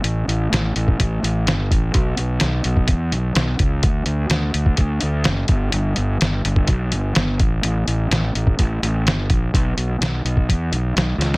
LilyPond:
<<
  \new Staff \with { instrumentName = "Fingered electric bass" } { \clef bass \time 4/4 \key d \major \tempo 4 = 126 a,,8 a,,8 a,,8 a,,8 a,,8 a,,8 g,,8 a,,8 | b,,8 b,,8 b,,8 b,,8 e,8 b,,8 b,,8 cis,8 | d,8 d,8 d,8 d,8 d,8 d,8 fis,,8 g,,8 | g,,8 g,,8 g,,8 g,,8 b,,8 g,,8 g,,8 a,,8 |
a,,8 a,,8 a,,8 a,,8 a,,8 a,,8 g,,8 bes,,8 | b,,8 b,,8 b,,8 b,,8 e,8 b,,8 b,,8 cis,8 | }
  \new DrumStaff \with { instrumentName = "Drums" } \drummode { \time 4/4 hh8 hh8 <hh sn>8 hh16 bd16 <hh bd>8 hh8 <hh sn>8 <hh bd>8 | <hh bd>8 hh8 <hh sn>8 hh16 bd16 <hh bd>8 hh8 <hh sn>8 <hh bd>8 | <hh bd>8 hh8 <hh sn>8 hh16 bd16 <hh bd>8 hh8 <hh sn>8 <hh bd>8 | hh8 hh8 <hh sn>8 hh16 bd16 <hh bd>8 hh8 <hh sn>8 <hh bd>8 |
hh8 hh8 <hh sn>8 hh16 bd16 <hh bd>8 hh8 <hh sn>8 <hh bd>8 | <hh bd>8 hh8 <hh sn>8 hh16 bd16 <hh bd>8 hh8 <hh sn>8 <hh sn>16 sn16 | }
>>